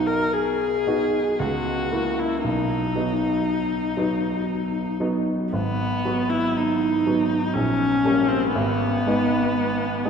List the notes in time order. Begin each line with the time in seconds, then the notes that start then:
Already playing: B1 B3 D#4 F#4
0.07 A#4
0.33 G#4
0.87 B3 D#4 F#4
1.39 C#2 F#4
1.92 A#3 E4
2.19 E4
2.44 B1 D#4
2.96 F#3 B3 D#4
3.97 F#3 B3 D#4
5.00 F#3 B3 D#4
5.53 G#1 B3
6.05 F#3 B3
6.30 E4
6.56 D#4
7.07 F#3 B3
7.54 A#1 C#4
8.04 G3 A#3 C#4
8.28 C4
8.55 G#1 B3
9.06 G#3 B3 D#4
10.05 G#3 B3 D#4